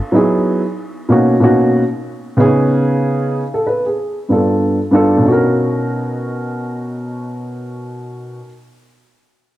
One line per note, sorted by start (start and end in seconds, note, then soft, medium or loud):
0.12 0.61 F#3 medium
0.12 0.61 B3 medium
0.12 0.62 D#4 medium
0.12 0.62 E4 medium
0.12 0.63 G#4 medium
1.09 1.34 B2 medium
1.09 1.34 A#3 medium
1.09 1.34 C#4 medium
1.09 1.35 D#4 medium
1.09 1.36 F#4 medium
1.40 1.81 B2 medium
1.40 1.81 A#3 medium
1.40 1.81 C#4 medium
1.40 1.82 D#4 medium
1.40 1.82 F#4 medium
2.37 3.41 C#3 medium
2.37 3.41 B3 medium
2.37 3.42 C#4 medium
2.37 3.42 D#4 medium
2.37 3.34 G#4 medium
3.54 3.65 A4 medium
3.67 3.85 B4 medium
3.86 4.16 G#4 medium
4.29 4.76 G2 medium
4.29 4.77 B3 soft
4.29 4.77 D4 soft
4.29 4.77 F4 soft
4.29 4.78 A4 medium
4.91 5.24 G2 medium
4.91 5.24 B3 medium
4.91 5.25 D4 medium
4.91 5.25 F4 medium
4.91 5.26 A4 medium
5.17 8.37 B2 medium
5.21 8.41 C#4 medium
5.21 8.45 D#4 medium
5.28 8.48 F#4 medium
5.28 8.52 A#4 medium